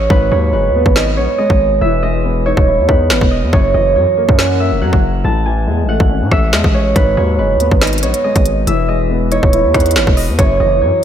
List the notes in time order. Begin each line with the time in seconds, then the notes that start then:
Already playing: C#5 D#5 F#5
0.10 G#1 G#2 B4, kick
0.32 D#2 F#3 C#5
0.53 F#1 G#3 B4
0.69 D#2
0.75 B3
0.86 G#1, kick
0.96 D#4 D#5, snare
1.17 A#1 B3 C#5
1.38 G#3 D#5
1.50 G#1, kick
1.81 E1 E3 E5
2.03 G#3 D#5
2.24 B3
2.46 D#4 C#5
2.57 D#1, kick
2.67 E4
2.79 E2
2.88 E2 D#4 B4, kick
3.10 G#1 B3, snare
3.21 E1, kick
3.31 D#5
3.43 E2
3.53 F#1 F#2 C#5, kick
3.74 F#1 E3 D#5
3.96 F#2 F#3 C#5
4.17 A#3
4.29 F#2, kick
4.39 C#4 F#5, snare
4.60 A#3 E5
4.71 E1
4.81 F#2 F#3 F#5
4.93 F#1, kick
5.24 A1 A2 A5
5.46 E3 G#5
5.67 E2 G#3
5.84 A1
5.89 A3 F#5
6.00 G#1, kick
6.10 C#4
6.21 A2
6.31 A1 A3 E5, kick, cross-stick
6.53 E2 G#3 D#5, snare
6.64 A1, kick
6.74 C#5
6.96 G#1 G#2 B4, kick, closed hi-hat
7.17 D#2 F#3 C#5
7.39 F#1 G#3 B4
7.55 D#2
7.60 B3, closed hi-hat
7.71 G#1, kick
7.81 D#4 D#5, snare, closed hi-hat
7.87 closed hi-hat
7.93 closed hi-hat
7.98 closed hi-hat
8.03 A#1 B3 C#5, closed hi-hat
8.14 closed hi-hat
8.24 G#3 D#5
8.36 G#1, kick, closed hi-hat
8.46 closed hi-hat
8.67 E1 E3 E5, closed hi-hat
8.89 G#3 D#5
9.10 B3
9.32 D#4 C#5, closed hi-hat
9.43 D#1, kick
9.53 E4, closed hi-hat
9.64 E2
9.74 E2 D#4 B4, kick, cross-stick, closed hi-hat
9.80 closed hi-hat
9.86 closed hi-hat
9.91 closed hi-hat
9.96 G#1 B3, snare
10.07 E1, kick
10.17 D#5, open hi-hat
10.29 E2
10.39 F#1 F#2 C#5, kick, closed hi-hat
10.60 F#1 E3 D#5
10.82 F#2 F#3 C#5